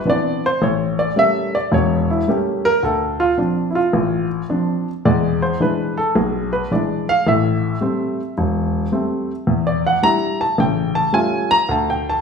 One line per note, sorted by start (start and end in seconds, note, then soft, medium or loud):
0.05 0.44 E3 medium
0.05 0.45 B3 medium
0.05 0.45 C4 medium
0.05 0.45 D4 medium
0.10 0.43 D5 loud
0.46 0.62 C5 loud
0.62 1.09 A1 medium
0.62 0.98 C#5 medium
0.99 1.16 D5 medium
1.16 1.55 G3 medium
1.16 1.55 A3 soft
1.16 1.55 A#3 medium
1.16 1.55 C#4 medium
1.16 1.53 E5 loud
1.55 1.72 D5 medium
1.72 2.20 E1 medium
1.72 2.20 E2 medium
1.72 2.09 C#5 medium
2.10 2.27 E4 medium
2.28 2.66 G3 medium
2.28 2.66 A3 medium
2.28 2.66 A#3 medium
2.28 2.67 C#4 medium
2.28 2.64 G4 medium
2.65 2.82 A#4 loud
2.83 3.30 D2 medium
2.83 3.19 A4 medium
3.20 3.37 F4 medium
3.37 3.76 F3 soft
3.37 3.76 C4 medium
3.37 3.77 D4 medium
3.70 3.73 E4 medium
3.75 4.26 F4 medium
3.93 4.41 A1 medium
4.49 4.88 F3 medium
4.49 4.88 C4 soft
4.49 4.88 D4 medium
5.05 5.53 E2 medium
5.05 5.52 G#3 medium
5.05 5.40 D5 medium
5.42 5.59 C5 medium
5.60 5.98 E3 medium
5.60 5.99 G#3 soft
5.60 5.99 D4 medium
5.60 5.96 B4 medium
5.98 6.14 A4 medium
6.15 6.63 B1 medium
6.15 6.51 G#4 medium
6.53 6.70 B4 medium
6.71 7.09 E3 medium
6.71 7.09 G#3 medium
6.71 7.09 D4 medium
6.71 7.07 D5 medium
7.09 7.26 F5 loud
7.27 7.74 A1 medium
7.27 7.74 A2 medium
7.27 8.33 E5 medium
7.81 8.19 G3 medium
7.81 8.20 A3 soft
7.81 8.20 C4 medium
8.38 8.85 E1 medium
8.92 9.30 G3 soft
8.92 9.31 A3 medium
8.92 9.31 C4 medium
9.47 9.95 E2 medium
9.67 9.84 D5 medium
9.87 10.03 F#5 medium
10.03 10.41 G3 medium
10.03 10.41 D4 medium
10.03 10.42 E4 medium
10.03 10.39 A#5 loud
10.41 10.58 A5 medium
10.58 11.06 A1 medium
10.58 11.06 C#3 medium
10.58 10.95 G5 medium
10.95 11.13 A5 medium
11.13 11.52 G3 medium
11.13 11.52 A3 medium
11.13 11.52 C#4 medium
11.13 11.52 F4 medium
11.13 11.49 G#5 medium
11.51 11.68 A#5 loud
11.69 12.17 D2 medium
11.69 11.88 A5 medium
11.90 12.06 G5 medium
12.10 12.21 A5 medium